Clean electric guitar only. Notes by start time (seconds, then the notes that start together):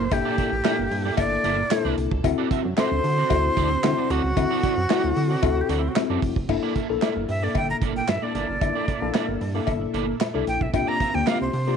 0.11 muted clean electric guitar stroke
0.25 A#3 E4 A4 D5
0.38 A#3 E4 A4 D5
0.52 muted clean electric guitar stroke
0.64 A#3 E4 A4 D5
0.78 muted clean electric guitar stroke
0.91 muted clean electric guitar stroke
1.05 A#3 E4 A4 D5
1.32 muted clean electric guitar stroke
1.44 A#3 E4 A4 D5
1.58 muted clean electric guitar stroke
1.71 muted clean electric guitar stroke
1.85 A#3 E4 A4 D5
1.97 muted clean electric guitar stroke
2.11 muted clean electric guitar stroke
2.24 muted clean electric guitar stroke
2.38 C4 F#4 A4 D5
2.50 C4 F#4 A4 E5
2.65 muted clean electric guitar stroke
2.77 C4 F#4 A4 D5
2.91 muted clean electric guitar stroke
3.04 muted clean electric guitar stroke
3.18 C4 F#4 A4 D5
3.44 muted clean electric guitar stroke
3.57 C4 F#4 A4 D5
3.71 muted clean electric guitar stroke
3.84 muted clean electric guitar stroke
3.98 C4 F#4 A4 D5
4.10 C4 F#4 A4 D5
4.24 muted clean electric guitar stroke
4.37 muted clean electric guitar stroke
4.51 C4 F#4 A4 D5
4.63 C4 F#4 A4 D5
4.77 muted clean electric guitar stroke
4.89 C4 F#4 A4 D5
5.04 muted clean electric guitar stroke
5.16 muted clean electric guitar stroke
5.30 C4 F#4 A4 D5
5.57 muted clean electric guitar stroke
5.69 C4 F#4 A4 D5
5.83 muted clean electric guitar stroke
5.96 muted clean electric guitar stroke
6.10 C4 F#4 A4 D5
6.22 muted clean electric guitar stroke
6.37 muted clean electric guitar stroke
6.49 muted clean electric guitar stroke
6.63 A#3 E4 A4 D5
6.75 A#3 E4 A4 E5
6.89 muted clean electric guitar stroke
7.02 A#3 E4 A4 D5
7.16 muted clean electric guitar stroke
7.28 muted clean electric guitar stroke
7.43 A#3 E4 A4 D5
7.69 muted clean electric guitar stroke
7.81 A#3 E4 A4 D5
7.96 muted clean electric guitar stroke
8.22 A#3 E4 A4 D5
8.35 A#3 E4 A4 D5
8.49 muted clean electric guitar stroke
8.61 muted clean electric guitar stroke
8.75 A#3 E4 A4 D5
8.88 A#3 E4 A4 D5
9.02 muted clean electric guitar stroke
9.14 A#3 E4 A4 D5
9.28 muted clean electric guitar stroke
9.41 muted clean electric guitar stroke
9.55 A#3 E4 A4 D5
9.81 muted clean electric guitar stroke
9.94 A#3 E4 A4 D5
10.08 muted clean electric guitar stroke
10.20 muted clean electric guitar stroke
10.34 A#3 E4 A4 D5
10.47 muted clean electric guitar stroke
10.61 muted clean electric guitar stroke
10.73 muted clean electric guitar stroke
10.87 C4 F4 A#4 D5
11.00 C4 F4 A#4 E5
11.14 muted clean electric guitar stroke
11.26 C4 F4 A#4 D5
11.40 muted clean electric guitar stroke
11.53 muted clean electric guitar stroke
11.67 C4 F4 A#4 D5